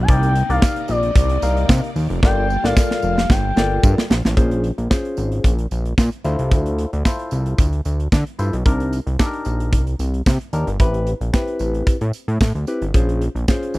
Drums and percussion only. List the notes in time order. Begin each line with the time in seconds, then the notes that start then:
0.08 kick, closed hi-hat
0.23 closed hi-hat
0.36 closed hi-hat
0.50 closed hi-hat
0.62 kick, snare, tambourine
0.76 closed hi-hat
0.88 closed hi-hat, tambourine
1.03 closed hi-hat
1.16 kick, closed hi-hat, tambourine
1.29 closed hi-hat
1.42 closed hi-hat, tambourine
1.57 closed hi-hat
1.69 kick, snare, tambourine
1.84 closed hi-hat
1.96 open hi-hat, tambourine
2.10 closed hi-hat
2.23 kick, snare, tambourine
2.50 tambourine
2.64 snare
2.77 kick, snare, tambourine
2.91 snare
3.02 tambourine
3.18 snare
3.30 kick, snare, tambourine
3.57 snare, tambourine
3.83 kick, tambourine
3.98 snare
4.11 snare, tambourine
4.25 snare
4.37 kick, closed hi-hat, tambourine
4.51 closed hi-hat
4.64 closed hi-hat
4.78 closed hi-hat
4.91 kick, snare, tambourine
5.05 closed hi-hat
5.17 closed hi-hat, tambourine
5.32 closed hi-hat
5.44 kick, closed hi-hat, tambourine
5.58 closed hi-hat
5.71 closed hi-hat, tambourine
5.85 closed hi-hat
5.98 kick, snare, tambourine
6.12 closed hi-hat
6.25 closed hi-hat, tambourine
6.39 closed hi-hat
6.52 kick, closed hi-hat, tambourine
6.66 closed hi-hat
6.79 closed hi-hat
6.93 closed hi-hat
7.05 kick, snare, tambourine
7.19 closed hi-hat
7.31 closed hi-hat, tambourine
7.46 closed hi-hat
7.58 kick, closed hi-hat, tambourine
7.73 closed hi-hat
7.85 closed hi-hat, tambourine
8.00 closed hi-hat
8.12 kick, snare, tambourine
8.27 closed hi-hat
8.39 closed hi-hat, tambourine
8.53 closed hi-hat
8.66 kick, closed hi-hat
8.80 closed hi-hat
8.93 closed hi-hat, tambourine
9.07 closed hi-hat
9.19 kick, snare, tambourine
9.33 closed hi-hat
9.45 closed hi-hat, tambourine
9.60 closed hi-hat
9.73 kick, closed hi-hat, tambourine
9.87 closed hi-hat
9.99 closed hi-hat, tambourine
10.14 closed hi-hat
10.26 kick, snare, tambourine
10.41 closed hi-hat
10.53 closed hi-hat, tambourine
10.67 closed hi-hat
10.80 kick, closed hi-hat, tambourine
10.94 closed hi-hat
11.07 closed hi-hat
11.21 closed hi-hat
11.34 kick, snare, tambourine
11.48 closed hi-hat
11.59 closed hi-hat, tambourine
11.74 closed hi-hat
11.87 kick, closed hi-hat, tambourine
12.01 closed hi-hat
12.13 closed hi-hat, tambourine
12.28 closed hi-hat
12.41 kick, snare, tambourine
12.55 closed hi-hat
12.67 closed hi-hat, tambourine
12.82 closed hi-hat
12.94 kick, closed hi-hat, tambourine
13.09 closed hi-hat
13.21 closed hi-hat
13.36 closed hi-hat
13.48 kick, snare, tambourine
13.63 closed hi-hat
13.74 closed hi-hat, tambourine